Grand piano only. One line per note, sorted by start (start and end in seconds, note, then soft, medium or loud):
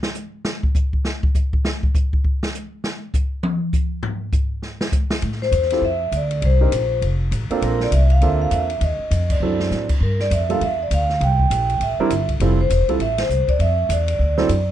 5.72 5.82 C4 medium
5.72 5.82 E4 medium
5.72 5.82 F4 medium
5.72 5.82 G4 medium
5.72 5.82 A4 medium
6.61 6.71 C4 medium
6.61 6.71 D4 medium
6.61 6.71 D#4 medium
6.61 6.71 G4 medium
6.61 6.71 A#4 medium
7.51 7.89 A#3 medium
7.51 7.90 C4 medium
7.51 7.90 D4 medium
7.51 7.90 F4 medium
7.51 7.90 A4 medium
8.22 8.67 A#3 medium
8.22 8.67 C4 medium
8.22 8.67 D4 medium
8.22 8.67 F4 medium
8.22 8.67 A4 medium
9.42 9.86 F#3 medium
9.42 9.86 C4 medium
9.42 9.86 D4 soft
9.42 9.87 E4 medium
9.42 9.87 A4 medium
10.49 10.60 G3 medium
10.49 10.60 A#3 medium
10.49 10.60 D4 medium
10.49 10.60 F4 medium
10.49 10.60 A4 medium
12.00 12.10 G3 medium
12.00 12.10 C4 medium
12.00 12.10 D4 medium
12.00 12.10 E4 medium
12.00 12.10 A#4 medium
12.41 12.57 G3 medium
12.41 12.57 C4 medium
12.41 12.57 E4 medium
12.41 12.58 F4 medium
12.41 12.57 A4 medium
12.89 12.99 G3 medium
12.89 12.99 C4 medium
12.89 12.99 E4 medium
12.89 12.99 F4 medium
12.89 12.99 A4 medium
14.38 14.48 F#3 medium
14.38 14.48 C4 medium
14.38 14.48 D4 medium
14.38 14.48 E4 medium
14.38 14.48 A4 medium